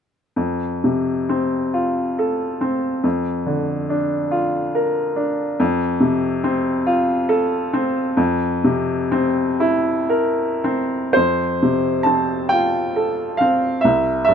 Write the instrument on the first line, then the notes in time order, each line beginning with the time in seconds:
upright piano
0.36 F2
0.84 C3
1.29 C4
1.74 F4
2.19 A4
2.61 C4
3.04 F2
3.46 D3
3.90 D4
4.31 F4
4.75 A#4
5.16 D4
5.60 F2
6.00 C3
6.44 C4
6.86 F4
7.29 A4
7.73 C4
8.17 F2
8.64 C3
9.12 C4
9.60 E4
10.09 A#4
10.64 C4
11.13 F2 C5
11.62 C3
12.03 C4 A5
12.49 F4 G5
12.96 A4
13.37 C4 F5
13.81 C2 E5
14.25 G2 E5